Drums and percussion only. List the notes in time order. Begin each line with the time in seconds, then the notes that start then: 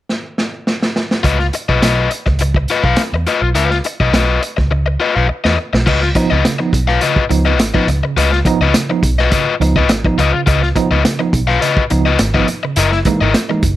0.09 snare
0.38 snare
0.67 snare
0.82 snare
0.96 snare
1.11 snare
1.24 kick, closed hi-hat
1.40 snare
1.53 closed hi-hat
1.69 kick
1.82 snare, closed hi-hat
2.11 closed hi-hat
2.26 kick, snare
2.39 closed hi-hat
2.54 kick
2.68 closed hi-hat
2.84 kick
2.96 snare, closed hi-hat
3.27 snare, closed hi-hat
3.55 closed hi-hat
3.71 snare
3.84 closed hi-hat
4.00 kick
4.14 snare, closed hi-hat
4.43 closed hi-hat
4.58 kick, snare
5.45 snare
5.74 snare
5.87 kick, crash
6.03 snare
6.15 kick, closed hi-hat
6.45 snare, closed hi-hat
6.73 kick, closed hi-hat
6.88 snare
7.01 closed hi-hat
7.16 kick
7.31 closed hi-hat
7.59 snare, closed hi-hat
7.75 kick
7.88 snare, closed hi-hat
8.18 closed hi-hat
8.32 snare
8.45 kick, closed hi-hat
8.74 snare, closed hi-hat
9.03 kick, closed hi-hat
9.19 snare
9.32 kick, closed hi-hat
9.62 closed hi-hat
9.76 kick
9.89 snare, closed hi-hat
10.05 kick
10.19 snare, closed hi-hat
10.47 kick, closed hi-hat
10.63 snare
10.76 kick, closed hi-hat
11.05 snare, closed hi-hat
11.33 kick, closed hi-hat
11.49 snare
11.62 closed hi-hat
11.77 kick
11.90 closed hi-hat
12.19 snare, closed hi-hat
12.34 kick
12.48 snare, closed hi-hat
12.76 closed hi-hat
12.92 snare
13.05 kick, closed hi-hat
13.34 snare, closed hi-hat
13.63 kick, closed hi-hat